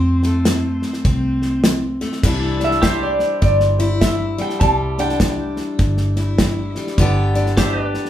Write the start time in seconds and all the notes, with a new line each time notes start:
Already playing: F2 C4 C5
0.23 A3, snare
0.45 F3, snare, hi-hat pedal
0.82 snare
0.93 snare
1.05 C2 C3 C4, kick, snare
1.42 snare
1.64 F3, snare, hi-hat pedal
2.01 A3, snare
2.12 snare
2.23 C2 C3 E3 G3 D4 E4, kick, snare, crash
2.60 D4, snare
2.64 E5
2.71 snare
2.82 E3 G4 C5 E5, kick, snare, hi-hat pedal
3.03 D5
3.20 snare
3.42 G1 G2 D5, kick, snare
3.60 snare
3.79 E4, snare
4.01 E3 E5, kick, snare, hi-hat pedal
4.38 G3 G5, snare
4.50 snare
4.60 C2 C3 G3 A5, kick, snare
4.98 D4 G5, snare
5.10 snare
5.20 E3, kick, snare, hi-hat pedal
5.57 snare
5.79 G1 G2, kick, snare
5.97 snare
6.16 E4, snare
6.38 E3, kick, snare, hi-hat pedal
6.75 G3, snare
6.87 snare
6.98 G1 G2 D3 B3 D4 G4, kick, snare
7.35 D4, snare
7.46 snare
7.57 D3 G4 C5 E5, kick, snare, hi-hat pedal
7.79 B4
7.85 D5
7.94 snare
8.05 snare